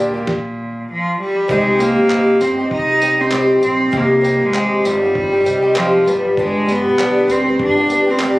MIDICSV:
0, 0, Header, 1, 5, 480
1, 0, Start_track
1, 0, Key_signature, -3, "minor"
1, 0, Tempo, 609570
1, 1176, Time_signature, 4, 2, 24, 8
1, 6607, End_track
2, 0, Start_track
2, 0, Title_t, "Twelve-string acoustic guitar"
2, 0, Program_c, 0, 25
2, 0, Note_on_c, 0, 55, 69
2, 0, Note_on_c, 0, 58, 77
2, 0, Note_on_c, 0, 62, 79
2, 0, Note_on_c, 0, 67, 79
2, 99, Note_off_c, 0, 67, 0
2, 108, Note_on_c, 0, 67, 61
2, 110, Note_off_c, 0, 62, 0
2, 116, Note_off_c, 0, 55, 0
2, 120, Note_off_c, 0, 58, 0
2, 120, Note_on_c, 0, 62, 51
2, 134, Note_on_c, 0, 58, 55
2, 137, Note_on_c, 0, 55, 43
2, 210, Note_off_c, 0, 67, 0
2, 216, Note_off_c, 0, 62, 0
2, 223, Note_off_c, 0, 58, 0
2, 224, Note_off_c, 0, 55, 0
2, 1165, Note_on_c, 0, 48, 80
2, 1181, Note_on_c, 0, 60, 80
2, 1184, Note_on_c, 0, 63, 89
2, 1188, Note_on_c, 0, 67, 95
2, 1408, Note_on_c, 0, 55, 66
2, 1410, Note_off_c, 0, 60, 0
2, 1411, Note_off_c, 0, 48, 0
2, 1420, Note_off_c, 0, 63, 0
2, 1420, Note_on_c, 0, 60, 73
2, 1422, Note_off_c, 0, 67, 0
2, 1428, Note_on_c, 0, 63, 83
2, 1436, Note_on_c, 0, 67, 70
2, 1647, Note_off_c, 0, 55, 0
2, 1651, Note_on_c, 0, 48, 87
2, 1655, Note_off_c, 0, 63, 0
2, 1657, Note_on_c, 0, 55, 78
2, 1658, Note_off_c, 0, 60, 0
2, 1662, Note_off_c, 0, 67, 0
2, 1664, Note_on_c, 0, 63, 90
2, 1666, Note_on_c, 0, 60, 91
2, 1671, Note_on_c, 0, 67, 85
2, 1881, Note_off_c, 0, 55, 0
2, 1891, Note_on_c, 0, 55, 68
2, 1892, Note_off_c, 0, 60, 0
2, 1893, Note_off_c, 0, 48, 0
2, 1900, Note_off_c, 0, 63, 0
2, 1902, Note_on_c, 0, 60, 72
2, 1904, Note_off_c, 0, 67, 0
2, 1909, Note_on_c, 0, 63, 69
2, 1915, Note_on_c, 0, 67, 80
2, 2026, Note_off_c, 0, 67, 0
2, 2035, Note_on_c, 0, 67, 51
2, 2037, Note_off_c, 0, 55, 0
2, 2043, Note_off_c, 0, 60, 0
2, 2043, Note_off_c, 0, 63, 0
2, 2052, Note_on_c, 0, 63, 49
2, 2060, Note_on_c, 0, 60, 48
2, 2271, Note_off_c, 0, 67, 0
2, 2280, Note_on_c, 0, 67, 53
2, 2284, Note_off_c, 0, 63, 0
2, 2290, Note_off_c, 0, 60, 0
2, 2293, Note_on_c, 0, 63, 45
2, 2303, Note_on_c, 0, 60, 44
2, 2367, Note_on_c, 0, 55, 63
2, 2369, Note_off_c, 0, 60, 0
2, 2373, Note_off_c, 0, 63, 0
2, 2376, Note_off_c, 0, 67, 0
2, 2378, Note_on_c, 0, 60, 62
2, 2382, Note_on_c, 0, 63, 67
2, 2393, Note_on_c, 0, 67, 70
2, 2509, Note_off_c, 0, 67, 0
2, 2516, Note_off_c, 0, 55, 0
2, 2519, Note_on_c, 0, 67, 62
2, 2521, Note_off_c, 0, 60, 0
2, 2521, Note_off_c, 0, 63, 0
2, 2530, Note_on_c, 0, 63, 49
2, 2546, Note_on_c, 0, 60, 52
2, 2608, Note_on_c, 0, 48, 92
2, 2614, Note_off_c, 0, 60, 0
2, 2615, Note_off_c, 0, 67, 0
2, 2615, Note_on_c, 0, 55, 95
2, 2616, Note_off_c, 0, 63, 0
2, 2623, Note_on_c, 0, 60, 88
2, 2625, Note_on_c, 0, 63, 89
2, 2631, Note_on_c, 0, 67, 103
2, 2833, Note_off_c, 0, 55, 0
2, 2843, Note_on_c, 0, 55, 66
2, 2844, Note_off_c, 0, 60, 0
2, 2852, Note_off_c, 0, 48, 0
2, 2854, Note_on_c, 0, 60, 65
2, 2857, Note_off_c, 0, 63, 0
2, 2858, Note_off_c, 0, 67, 0
2, 2866, Note_on_c, 0, 63, 57
2, 2867, Note_on_c, 0, 67, 66
2, 3075, Note_off_c, 0, 55, 0
2, 3079, Note_on_c, 0, 48, 83
2, 3080, Note_off_c, 0, 60, 0
2, 3084, Note_off_c, 0, 63, 0
2, 3085, Note_on_c, 0, 55, 96
2, 3088, Note_off_c, 0, 67, 0
2, 3090, Note_on_c, 0, 60, 82
2, 3094, Note_on_c, 0, 63, 88
2, 3097, Note_on_c, 0, 67, 89
2, 3303, Note_off_c, 0, 55, 0
2, 3313, Note_on_c, 0, 55, 70
2, 3316, Note_off_c, 0, 60, 0
2, 3322, Note_off_c, 0, 63, 0
2, 3325, Note_on_c, 0, 60, 60
2, 3327, Note_off_c, 0, 48, 0
2, 3331, Note_on_c, 0, 63, 69
2, 3333, Note_off_c, 0, 67, 0
2, 3343, Note_on_c, 0, 67, 77
2, 3564, Note_off_c, 0, 55, 0
2, 3570, Note_off_c, 0, 60, 0
2, 3571, Note_on_c, 0, 48, 82
2, 3573, Note_off_c, 0, 63, 0
2, 3579, Note_off_c, 0, 67, 0
2, 3579, Note_on_c, 0, 60, 91
2, 3583, Note_on_c, 0, 63, 87
2, 3588, Note_on_c, 0, 67, 88
2, 3811, Note_on_c, 0, 55, 62
2, 3813, Note_off_c, 0, 48, 0
2, 3814, Note_off_c, 0, 60, 0
2, 3819, Note_off_c, 0, 63, 0
2, 3822, Note_off_c, 0, 67, 0
2, 3824, Note_on_c, 0, 60, 68
2, 3830, Note_on_c, 0, 63, 64
2, 3836, Note_on_c, 0, 67, 68
2, 3944, Note_off_c, 0, 67, 0
2, 3954, Note_on_c, 0, 67, 52
2, 3957, Note_off_c, 0, 55, 0
2, 3960, Note_off_c, 0, 63, 0
2, 3964, Note_off_c, 0, 60, 0
2, 3969, Note_on_c, 0, 63, 49
2, 3984, Note_on_c, 0, 60, 50
2, 4179, Note_off_c, 0, 67, 0
2, 4189, Note_on_c, 0, 67, 50
2, 4194, Note_off_c, 0, 63, 0
2, 4203, Note_on_c, 0, 63, 46
2, 4204, Note_off_c, 0, 60, 0
2, 4214, Note_on_c, 0, 60, 41
2, 4283, Note_on_c, 0, 55, 67
2, 4284, Note_off_c, 0, 60, 0
2, 4290, Note_off_c, 0, 67, 0
2, 4294, Note_on_c, 0, 60, 68
2, 4295, Note_off_c, 0, 63, 0
2, 4304, Note_on_c, 0, 63, 65
2, 4309, Note_on_c, 0, 67, 62
2, 4419, Note_off_c, 0, 67, 0
2, 4428, Note_off_c, 0, 63, 0
2, 4428, Note_on_c, 0, 67, 61
2, 4433, Note_off_c, 0, 55, 0
2, 4438, Note_off_c, 0, 60, 0
2, 4438, Note_on_c, 0, 63, 57
2, 4450, Note_on_c, 0, 60, 53
2, 4526, Note_off_c, 0, 60, 0
2, 4526, Note_on_c, 0, 48, 97
2, 4530, Note_off_c, 0, 63, 0
2, 4530, Note_off_c, 0, 67, 0
2, 4531, Note_on_c, 0, 55, 95
2, 4536, Note_on_c, 0, 60, 92
2, 4540, Note_on_c, 0, 63, 90
2, 4543, Note_on_c, 0, 67, 104
2, 4757, Note_off_c, 0, 55, 0
2, 4766, Note_on_c, 0, 55, 66
2, 4771, Note_off_c, 0, 48, 0
2, 4775, Note_off_c, 0, 60, 0
2, 4777, Note_off_c, 0, 63, 0
2, 4778, Note_on_c, 0, 59, 70
2, 4779, Note_off_c, 0, 67, 0
2, 4783, Note_on_c, 0, 62, 64
2, 4793, Note_on_c, 0, 67, 58
2, 5011, Note_off_c, 0, 55, 0
2, 5017, Note_off_c, 0, 59, 0
2, 5019, Note_off_c, 0, 62, 0
2, 5020, Note_on_c, 0, 50, 73
2, 5024, Note_off_c, 0, 67, 0
2, 5027, Note_on_c, 0, 59, 77
2, 5029, Note_on_c, 0, 62, 88
2, 5035, Note_on_c, 0, 67, 84
2, 5244, Note_on_c, 0, 55, 67
2, 5248, Note_off_c, 0, 59, 0
2, 5253, Note_off_c, 0, 62, 0
2, 5257, Note_off_c, 0, 50, 0
2, 5258, Note_on_c, 0, 59, 77
2, 5263, Note_off_c, 0, 67, 0
2, 5263, Note_on_c, 0, 62, 73
2, 5272, Note_on_c, 0, 67, 75
2, 5490, Note_off_c, 0, 55, 0
2, 5496, Note_off_c, 0, 59, 0
2, 5496, Note_on_c, 0, 43, 75
2, 5499, Note_off_c, 0, 62, 0
2, 5501, Note_on_c, 0, 50, 80
2, 5503, Note_on_c, 0, 55, 94
2, 5504, Note_off_c, 0, 67, 0
2, 5509, Note_on_c, 0, 59, 96
2, 5515, Note_on_c, 0, 62, 101
2, 5518, Note_on_c, 0, 67, 96
2, 5723, Note_off_c, 0, 55, 0
2, 5733, Note_on_c, 0, 55, 73
2, 5735, Note_off_c, 0, 43, 0
2, 5738, Note_off_c, 0, 50, 0
2, 5740, Note_off_c, 0, 59, 0
2, 5745, Note_off_c, 0, 62, 0
2, 5746, Note_off_c, 0, 67, 0
2, 5749, Note_on_c, 0, 59, 67
2, 5756, Note_on_c, 0, 62, 82
2, 5761, Note_on_c, 0, 67, 75
2, 5866, Note_off_c, 0, 67, 0
2, 5875, Note_on_c, 0, 67, 53
2, 5878, Note_off_c, 0, 55, 0
2, 5878, Note_off_c, 0, 62, 0
2, 5886, Note_off_c, 0, 59, 0
2, 5887, Note_on_c, 0, 62, 48
2, 5895, Note_on_c, 0, 59, 51
2, 5904, Note_on_c, 0, 55, 46
2, 6110, Note_off_c, 0, 67, 0
2, 6119, Note_off_c, 0, 62, 0
2, 6119, Note_on_c, 0, 67, 56
2, 6127, Note_off_c, 0, 59, 0
2, 6129, Note_on_c, 0, 62, 45
2, 6132, Note_off_c, 0, 55, 0
2, 6140, Note_on_c, 0, 59, 47
2, 6146, Note_on_c, 0, 55, 38
2, 6202, Note_off_c, 0, 55, 0
2, 6212, Note_on_c, 0, 55, 63
2, 6213, Note_off_c, 0, 59, 0
2, 6215, Note_off_c, 0, 67, 0
2, 6220, Note_off_c, 0, 62, 0
2, 6222, Note_on_c, 0, 59, 64
2, 6234, Note_on_c, 0, 62, 63
2, 6240, Note_on_c, 0, 67, 75
2, 6349, Note_off_c, 0, 67, 0
2, 6357, Note_off_c, 0, 55, 0
2, 6358, Note_on_c, 0, 67, 64
2, 6363, Note_off_c, 0, 59, 0
2, 6363, Note_off_c, 0, 62, 0
2, 6372, Note_on_c, 0, 62, 55
2, 6375, Note_on_c, 0, 59, 52
2, 6387, Note_on_c, 0, 55, 45
2, 6453, Note_on_c, 0, 43, 98
2, 6455, Note_off_c, 0, 67, 0
2, 6456, Note_off_c, 0, 55, 0
2, 6462, Note_off_c, 0, 62, 0
2, 6462, Note_on_c, 0, 50, 89
2, 6463, Note_off_c, 0, 59, 0
2, 6466, Note_on_c, 0, 55, 92
2, 6472, Note_on_c, 0, 62, 95
2, 6476, Note_on_c, 0, 67, 94
2, 6607, Note_off_c, 0, 43, 0
2, 6607, Note_off_c, 0, 50, 0
2, 6607, Note_off_c, 0, 55, 0
2, 6607, Note_off_c, 0, 62, 0
2, 6607, Note_off_c, 0, 67, 0
2, 6607, End_track
3, 0, Start_track
3, 0, Title_t, "Cello"
3, 0, Program_c, 1, 42
3, 0, Note_on_c, 1, 46, 85
3, 697, Note_off_c, 1, 46, 0
3, 720, Note_on_c, 1, 53, 90
3, 932, Note_off_c, 1, 53, 0
3, 949, Note_on_c, 1, 55, 101
3, 1189, Note_on_c, 1, 56, 104
3, 1201, Note_off_c, 1, 55, 0
3, 1414, Note_on_c, 1, 58, 118
3, 1426, Note_off_c, 1, 56, 0
3, 1902, Note_on_c, 1, 60, 103
3, 1914, Note_off_c, 1, 58, 0
3, 2139, Note_off_c, 1, 60, 0
3, 2148, Note_on_c, 1, 63, 123
3, 2529, Note_on_c, 1, 60, 107
3, 2541, Note_off_c, 1, 63, 0
3, 2859, Note_off_c, 1, 60, 0
3, 2863, Note_on_c, 1, 60, 116
3, 3125, Note_on_c, 1, 58, 103
3, 3137, Note_off_c, 1, 60, 0
3, 3512, Note_on_c, 1, 56, 117
3, 3524, Note_off_c, 1, 58, 0
3, 3825, Note_on_c, 1, 55, 113
3, 3836, Note_off_c, 1, 56, 0
3, 4548, Note_on_c, 1, 53, 97
3, 4560, Note_off_c, 1, 55, 0
3, 4793, Note_on_c, 1, 55, 101
3, 4804, Note_off_c, 1, 53, 0
3, 5041, Note_on_c, 1, 56, 107
3, 5053, Note_off_c, 1, 55, 0
3, 5288, Note_on_c, 1, 59, 119
3, 5300, Note_off_c, 1, 56, 0
3, 5761, Note_on_c, 1, 60, 105
3, 5773, Note_off_c, 1, 59, 0
3, 5988, Note_off_c, 1, 60, 0
3, 6012, Note_on_c, 1, 62, 127
3, 6385, Note_on_c, 1, 60, 104
3, 6397, Note_off_c, 1, 62, 0
3, 6607, Note_off_c, 1, 60, 0
3, 6607, End_track
4, 0, Start_track
4, 0, Title_t, "Upright bass"
4, 0, Program_c, 2, 32
4, 0, Note_on_c, 2, 38, 83
4, 194, Note_off_c, 2, 38, 0
4, 1177, Note_on_c, 2, 36, 127
4, 1530, Note_off_c, 2, 36, 0
4, 1558, Note_on_c, 2, 31, 90
4, 1868, Note_off_c, 2, 31, 0
4, 1900, Note_on_c, 2, 31, 84
4, 2119, Note_off_c, 2, 31, 0
4, 2135, Note_on_c, 2, 36, 103
4, 2824, Note_off_c, 2, 36, 0
4, 2856, Note_on_c, 2, 34, 85
4, 3077, Note_off_c, 2, 34, 0
4, 3095, Note_on_c, 2, 36, 120
4, 3449, Note_off_c, 2, 36, 0
4, 3486, Note_on_c, 2, 32, 83
4, 3792, Note_off_c, 2, 32, 0
4, 3819, Note_on_c, 2, 31, 104
4, 4266, Note_off_c, 2, 31, 0
4, 4298, Note_on_c, 2, 36, 106
4, 4745, Note_off_c, 2, 36, 0
4, 4775, Note_on_c, 2, 31, 102
4, 5368, Note_off_c, 2, 31, 0
4, 5398, Note_on_c, 2, 35, 85
4, 5707, Note_off_c, 2, 35, 0
4, 5732, Note_on_c, 2, 38, 106
4, 5954, Note_off_c, 2, 38, 0
4, 5979, Note_on_c, 2, 31, 116
4, 6607, Note_off_c, 2, 31, 0
4, 6607, End_track
5, 0, Start_track
5, 0, Title_t, "Drums"
5, 215, Note_on_c, 9, 36, 117
5, 216, Note_on_c, 9, 38, 99
5, 294, Note_off_c, 9, 36, 0
5, 294, Note_off_c, 9, 38, 0
5, 1175, Note_on_c, 9, 36, 114
5, 1254, Note_off_c, 9, 36, 0
5, 1418, Note_on_c, 9, 54, 61
5, 1497, Note_off_c, 9, 54, 0
5, 1655, Note_on_c, 9, 39, 127
5, 1734, Note_off_c, 9, 39, 0
5, 1896, Note_on_c, 9, 54, 73
5, 1975, Note_off_c, 9, 54, 0
5, 2135, Note_on_c, 9, 36, 127
5, 2214, Note_off_c, 9, 36, 0
5, 2374, Note_on_c, 9, 54, 78
5, 2453, Note_off_c, 9, 54, 0
5, 2611, Note_on_c, 9, 39, 124
5, 2690, Note_off_c, 9, 39, 0
5, 2856, Note_on_c, 9, 54, 68
5, 2935, Note_off_c, 9, 54, 0
5, 3094, Note_on_c, 9, 36, 122
5, 3173, Note_off_c, 9, 36, 0
5, 3342, Note_on_c, 9, 54, 59
5, 3420, Note_off_c, 9, 54, 0
5, 3577, Note_on_c, 9, 39, 122
5, 3655, Note_off_c, 9, 39, 0
5, 3820, Note_on_c, 9, 54, 76
5, 3899, Note_off_c, 9, 54, 0
5, 4058, Note_on_c, 9, 36, 127
5, 4136, Note_off_c, 9, 36, 0
5, 4301, Note_on_c, 9, 54, 70
5, 4380, Note_off_c, 9, 54, 0
5, 4536, Note_on_c, 9, 39, 126
5, 4614, Note_off_c, 9, 39, 0
5, 4783, Note_on_c, 9, 54, 62
5, 4862, Note_off_c, 9, 54, 0
5, 5019, Note_on_c, 9, 36, 120
5, 5098, Note_off_c, 9, 36, 0
5, 5264, Note_on_c, 9, 54, 58
5, 5343, Note_off_c, 9, 54, 0
5, 5505, Note_on_c, 9, 39, 115
5, 5584, Note_off_c, 9, 39, 0
5, 5745, Note_on_c, 9, 54, 78
5, 5823, Note_off_c, 9, 54, 0
5, 5980, Note_on_c, 9, 36, 127
5, 6059, Note_off_c, 9, 36, 0
5, 6220, Note_on_c, 9, 54, 76
5, 6299, Note_off_c, 9, 54, 0
5, 6454, Note_on_c, 9, 39, 111
5, 6533, Note_off_c, 9, 39, 0
5, 6607, End_track
0, 0, End_of_file